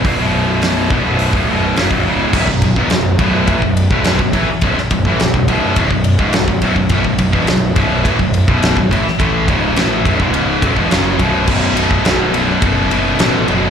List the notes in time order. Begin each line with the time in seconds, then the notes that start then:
0.04 G1 G2 D3, kick, open hi-hat
0.18 B0 B1 F#2 B2
0.62 snare, open hi-hat
0.90 E1 E2 B2, kick
1.05 B0 B1 F#2 B2
1.19 open hi-hat
1.33 D1 D2 A2, kick
1.48 B0 B1 F#2 B2
1.76 F#1 F#2 C#3, snare, open hi-hat
1.91 B0 B1 F#2, kick
2.05 C#1 C#2 G#2 C#3
2.33 B0 B1 F#2, kick, crash
2.47 B0 B1 F#2, kick
2.62 B0 B1 F#2, kick, ride
2.76 E1 E2 B2, kick
2.90 B0 B1 F#2, snare, ride
3.19 B0 B1 F#2 B2, kick, ride
3.47 A1 A2 E3, kick, ride
3.62 B0 B1 F#2, kick
3.77 ride
3.91 B0 B1 F#2 B2, kick
4.04 snare, ride
4.19 B0 B1 F#2, kick
4.33 A1 A2 E3, kick, ride
4.49 muted picked electric bass stroke, muted distorted electric guitar stroke
4.61 B0 B1 F#2, kick, ride
4.76 muted picked electric bass stroke, muted distorted electric guitar stroke, snare
4.91 B0 B1 F#2, kick, ride
5.05 A1 A2 E3, kick
5.20 B0 B1 F#2, snare, ride
5.34 B0 B1 F#2, kick
5.48 B0 B1 F#2 B2, kick, ride
5.76 D1 D2 A2, kick, ride
5.91 B0 B1 F#2, kick
6.04 ride
6.19 C#1 C#2 G#2, kick
6.33 B0 B1 F#2, snare, ride
6.48 B0 B1 F#2, kick
6.62 B0 B1 F#2, kick, ride
6.76 B0 B1 F#2, kick
6.89 B0 B1 F#2, kick, ride
7.04 B0 B1 F#2, kick
7.18 B0 B1 F#2, kick, ride
7.33 E1 E2 B2, kick
7.47 B0 B1 F#2, snare, ride
7.76 B0 B1 F#2 B2, kick, ride
8.05 A1 A2 E3, kick, ride
8.19 B0 B1 F#2, kick
8.34 ride
8.48 B0 B1 F#2 B2, kick
8.62 snare, ride
8.77 B0 B1 F#2, kick
8.91 A1 A2 E3, kick, ride
9.04 muted distorted electric guitar stroke, muted picked electric bass stroke, snare
9.19 A1 A2 E3 A3, kick, ride
9.47 C#1 C#2 G#2 C#3, kick, ride
9.76 A1 A2 E3 A3, snare, ride
10.05 B0 B1 F#2, kick, ride
10.20 C#1 C#2 G#2 C#3, kick
10.34 ride
10.62 B0 B1 F#2, kick, ride
10.76 E1 E2 B2, kick
10.90 F#1 F#2 C#3 F#3, snare, ride
11.19 B0 B1 F#2 B2, kick, ride
11.47 B0 B1 F#2 B2, kick, crash
11.76 B1 F#2 B2, ride
11.91 kick
12.04 B0 B1 F#2 B2, snare, ride
12.33 B1 F#2 B2, ride
12.61 F#1 B1 F#2 B2, kick, ride
12.90 B1 F#2 B2, ride
13.19 A1 B1 F#2 B2, snare, ride
13.48 F#1 B1 F#2 B2, ride